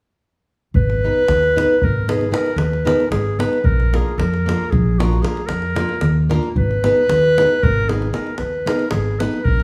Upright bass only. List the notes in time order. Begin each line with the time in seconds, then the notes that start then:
0.74 G#1
1.28 D#2
1.83 G#1
2.56 D#2
3.11 G#1
3.64 A#1
4.18 F2
4.72 A#1
5.48 F2
6.02 D#2
6.56 G#1
7.09 D#2
7.63 G#1
8.39 D#2
8.91 G#1
9.45 A#1